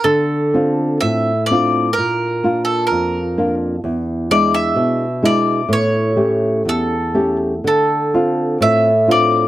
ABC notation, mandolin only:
X:1
M:2/4
L:1/16
Q:1/4=63
K:Dm
V:1 name="Mandolin"
A4 e2 d2 | B3 A B3 z | z2 d e3 d2 | ^c4 A3 z |
A4 e2 d2 |]